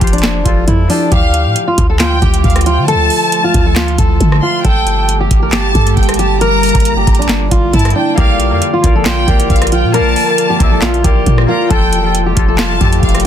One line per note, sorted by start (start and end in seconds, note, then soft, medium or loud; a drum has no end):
0.00 0.44 F1 loud
0.00 0.43 F3 medium
0.00 0.37 F4 medium
0.00 0.11 G4 medium
0.00 0.38 G4 medium
0.00 0.39 C5 medium
0.00 kick loud
0.00 closed hi-hat medium
0.07 closed hi-hat medium
0.13 0.44 D4 medium
0.13 closed hi-hat medium
0.18 closed hi-hat medium
0.23 snare loud
0.23 clap medium
0.23 closed hi-hat medium
0.44 0.67 F1 loud
0.44 0.87 F3 medium
0.44 0.82 F4 medium
0.44 0.66 F4 medium
0.44 0.82 G4 medium
0.44 kick medium
0.44 closed hi-hat medium
0.48 0.83 A4 medium
0.68 0.89 F2 loud
0.68 0.88 E4 medium
0.68 kick medium
0.68 closed hi-hat medium
0.88 1.17 F3 medium
0.88 1.10 D4 medium
0.88 1.07 F4 medium
0.88 1.08 G4 medium
0.88 open hi-hat medium
0.92 1.09 A4 medium
1.12 1.47 D2 loud
1.12 11.67 D3 medium
1.12 4.61 F3 medium
1.12 4.61 A3 medium
1.12 4.61 F4 medium
1.12 1.64 G4 medium
1.12 1.53 F5 loud
1.12 kick loud
1.12 closed hi-hat medium
1.34 closed hi-hat medium
1.45 1.55 A2 loud
1.56 closed hi-hat medium
1.68 1.88 F4 medium
1.78 2.20 D2 loud
1.78 kick loud
1.78 closed hi-hat medium
1.90 1.99 A4 medium
1.99 2.20 F4 medium
1.99 2.41 G5 loud
1.99 snare loud
1.99 clap loud
1.99 closed hi-hat medium
2.22 2.43 D2 loud
2.22 2.63 G4 medium
2.22 kick loud
2.22 closed hi-hat medium
2.34 closed hi-hat loud
2.44 2.79 D2 loud
2.44 2.65 F5 medium
2.44 kick medium
2.44 closed hi-hat soft
2.50 closed hi-hat medium
2.56 cross-stick medium
2.56 closed hi-hat medium
2.61 closed hi-hat medium
2.66 2.86 F4 medium
2.66 2.87 G5 medium
2.66 closed hi-hat medium
2.78 2.96 D3 loud
2.88 3.41 A4 loud
2.88 3.73 A5 loud
2.88 closed hi-hat medium
2.94 3.10 D2 loud
3.10 open hi-hat medium
3.32 closed hi-hat medium
3.44 3.64 F4 medium
3.54 3.97 D2 loud
3.54 kick loud
3.54 closed hi-hat medium
3.66 3.76 A4 medium
3.76 3.97 F4 medium
3.76 snare loud
3.76 clap medium
3.76 closed hi-hat medium
3.88 closed hi-hat soft
3.98 4.20 D2 loud
3.98 4.40 A4 medium
3.98 kick loud
3.98 closed hi-hat loud
4.21 4.42 D3 loud
4.21 kick medium
4.21 closed hi-hat medium
4.32 cross-stick medium
4.42 4.63 F4 medium
4.42 4.63 C6 medium
4.65 5.28 G1 loud
4.65 8.14 G3 medium
4.65 8.14 A#3 medium
4.65 6.39 G4 loud
4.65 5.17 A4 loud
4.65 5.06 G5 loud
4.65 kick loud
4.65 closed hi-hat medium
4.87 closed hi-hat medium
5.09 closed hi-hat medium
5.20 5.41 G4 medium
5.31 5.73 G1 loud
5.31 kick loud
5.31 closed hi-hat medium
5.43 5.52 A#4 medium
5.52 5.73 G4 medium
5.52 5.94 A5 loud
5.52 snare loud
5.52 clap loud
5.52 closed hi-hat medium
5.75 5.96 G2 loud
5.75 6.16 A4 medium
5.75 kick loud
5.75 closed hi-hat medium
5.87 closed hi-hat medium
5.97 6.72 G1 loud
5.97 6.18 G5 medium
5.97 kick medium
5.97 closed hi-hat soft
6.03 closed hi-hat medium
6.09 cross-stick medium
6.09 closed hi-hat medium
6.14 closed hi-hat medium
6.19 6.39 G4 medium
6.19 6.40 A5 medium
6.19 closed hi-hat medium
6.41 13.27 F4 medium
6.41 6.94 A#4 loud
6.41 7.25 A#5 loud
6.41 closed hi-hat medium
6.63 closed hi-hat medium
6.63 open hi-hat medium
6.69 closed hi-hat medium
6.75 7.06 G1 loud
6.75 kick loud
6.75 closed hi-hat medium
6.80 closed hi-hat medium
6.85 closed hi-hat medium
6.97 7.17 G4 medium
7.07 7.50 G1 loud
7.07 kick loud
7.07 closed hi-hat medium
7.15 closed hi-hat medium
7.19 7.50 D4 medium
7.19 closed hi-hat medium
7.29 snare loud
7.29 clap medium
7.29 closed hi-hat medium
7.51 7.73 G1 loud
7.51 7.72 F4 medium
7.51 kick loud
7.51 closed hi-hat loud
7.73 7.95 G2 loud
7.73 7.94 E4 medium
7.73 7.95 A5 medium
7.73 kick medium
7.73 closed hi-hat medium
7.79 closed hi-hat medium
7.85 cross-stick loud
7.85 closed hi-hat medium
7.90 closed hi-hat medium
7.96 8.16 D4 medium
7.96 8.17 G5 medium
8.16 8.53 A#1 loud
8.16 11.67 F3 medium
8.16 8.44 A#3 loud
8.16 11.67 A#3 medium
8.16 8.70 G4 medium
8.16 8.44 A#4 medium
8.16 8.45 D5 medium
8.16 8.59 F5 loud
8.16 kick loud
8.16 closed hi-hat medium
8.20 8.46 F5 loud
8.40 closed hi-hat medium
8.50 8.61 F2 loud
8.50 8.77 A#3 medium
8.50 8.78 A#4 medium
8.50 8.78 D5 medium
8.54 8.79 F5 medium
8.62 closed hi-hat medium
8.73 8.94 F4 medium
8.82 9.26 A#1 loud
8.82 9.19 A#3 medium
8.82 9.20 A#4 medium
8.82 9.20 D5 medium
8.82 kick loud
8.82 closed hi-hat medium
8.86 9.21 F5 medium
8.96 9.05 A4 medium
9.05 9.26 F4 medium
9.05 9.47 G5 loud
9.05 snare loud
9.05 clap loud
9.05 closed hi-hat medium
9.26 9.49 A#1 loud
9.26 9.92 A#3 medium
9.26 9.69 G4 medium
9.26 9.93 A#4 medium
9.26 9.95 D5 medium
9.26 kick loud
9.26 closed hi-hat medium
9.30 9.96 F5 medium
9.40 closed hi-hat medium
9.50 9.85 A#1 loud
9.50 9.71 F5 medium
9.50 kick medium
9.50 closed hi-hat soft
9.56 closed hi-hat medium
9.62 cross-stick medium
9.62 closed hi-hat medium
9.67 closed hi-hat medium
9.72 9.92 F4 medium
9.72 9.93 G5 medium
9.72 closed hi-hat medium
9.84 10.01 A#2 loud
9.92 10.20 A#3 loud
9.92 10.21 A#4 medium
9.92 10.47 A#4 loud
9.92 10.22 D5 medium
9.92 10.78 A5 loud
9.92 closed hi-hat medium
9.96 10.15 A#1 loud
9.96 10.22 F5 loud
10.16 open hi-hat medium
10.26 10.53 A#3 medium
10.26 10.54 A#4 medium
10.26 10.55 D5 medium
10.30 10.55 F5 medium
10.38 closed hi-hat medium
10.50 10.70 G4 medium
10.58 11.03 A#1 loud
10.58 10.96 A#3 medium
10.58 10.96 A#4 medium
10.58 10.97 D5 medium
10.58 kick loud
10.58 closed hi-hat medium
10.63 10.98 E5 medium
10.72 10.81 A4 medium
10.82 11.03 F4 medium
10.82 snare loud
10.82 clap loud
10.82 closed hi-hat medium
10.94 closed hi-hat soft
11.02 11.26 A#1 loud
11.02 11.40 A#3 medium
11.02 11.46 G4 medium
11.02 11.40 A#4 medium
11.02 11.41 D5 medium
11.02 kick loud
11.02 closed hi-hat medium
11.07 11.42 F5 medium
11.26 11.48 A#2 loud
11.26 kick medium
11.26 closed hi-hat medium
11.38 cross-stick medium
11.47 11.66 A#3 medium
11.47 11.69 F4 medium
11.47 11.66 A#4 medium
11.47 11.67 D5 medium
11.47 11.70 A#5 medium
11.51 11.68 F5 medium
11.69 12.34 F1 loud
11.69 13.27 C3 medium
11.69 12.01 F3 loud
11.69 13.27 G3 medium
11.69 13.27 A3 medium
11.69 11.97 F4 medium
11.69 11.98 G4 medium
11.69 12.23 A4 loud
11.69 12.12 G5 loud
11.69 kick loud
11.69 closed hi-hat medium
11.73 11.99 A4 loud
11.93 closed hi-hat medium
12.02 12.34 F3 medium
12.02 12.31 F4 medium
12.02 12.31 G4 medium
12.06 12.32 A4 medium
12.15 closed hi-hat medium
12.26 12.47 G4 medium
12.35 12.79 F1 loud
12.35 12.78 F3 medium
12.35 12.73 F4 medium
12.35 12.73 G4 medium
12.35 kick loud
12.35 closed hi-hat medium
12.39 12.74 A4 medium
12.48 12.58 A4 medium
12.58 12.79 F4 medium
12.58 13.00 A5 loud
12.58 snare loud
12.58 clap medium
12.58 closed hi-hat medium
12.79 13.02 F2 loud
12.79 13.27 F3 medium
12.79 13.27 F4 medium
12.79 13.22 G4 medium
12.79 13.27 G4 medium
12.79 kick loud
12.79 closed hi-hat medium
12.83 13.27 A4 medium
12.93 closed hi-hat medium
13.03 13.27 F1 loud
13.03 13.24 F5 medium
13.03 kick medium
13.03 closed hi-hat soft
13.09 closed hi-hat medium
13.15 cross-stick medium
13.15 closed hi-hat medium
13.20 closed hi-hat medium